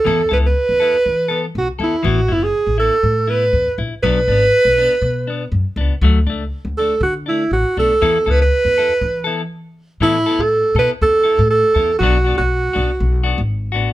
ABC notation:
X:1
M:4/4
L:1/16
Q:1/4=120
K:A
V:1 name="Alto saxophone"
A2 B B8 z F2 E2 | F2 E G3 A4 B4 z2 | B12 z4 | z6 A2 F2 E2 F2 A2- |
A2 B B8 z4 z | E3 A3 B2 A4 A4 | F3 F8 z4 z |]
V:2 name="Clean electric guitar"
[E,B,EA]2 [B,EA]2 z2 [B,EA]2 z2 [B,A]2 z2 [B,EA]2 | [E,B,E]2 [B,E]2 z2 [B,E]2 z2 [B,E]2 z2 E2 | [F,B,D]2 [B,D]2 z2 [B,D]2 z2 [B,D]2 z2 [B,D]2 | [F,A,]2 [A,D]2 z2 [A,D]2 z2 [A,D]2 z2 [A,D]2 |
[E,B,EA]2 [B,EA]2 z2 [EA]2 z2 [B,EA]2 z4 | [E,B,EA]2 [B,EA]2 z2 [B,EA]2 z2 [B,EA]2 z2 [B,EA]2 | [F,B,DF]2 [B,DF]2 z2 [B,DF]2 z2 [B,DF]2 z2 [B,DF]2 |]
V:3 name="Upright bass" clef=bass
E,,2 C,,2 z E,,2 z E,4 B,,, z E,, z | A,,,2 F,,,2 z A,,,2 z A,,4 E,, z _B,,, z | B,,,2 G,,,2 z B,,,2 z B,,4 F,, z C,, z | D,,2 C,,2 z D,,2 z D,4 A,,, z B,,, z |
E,,2 C,,2 z E,,2 z E,4 z4 | A,,2 z A,,2 z B,, z E,,3 A,,2 z E,,2 | B,,,3 B,,,3 B,,, z B,,,3 G,,,3 A,,, z |]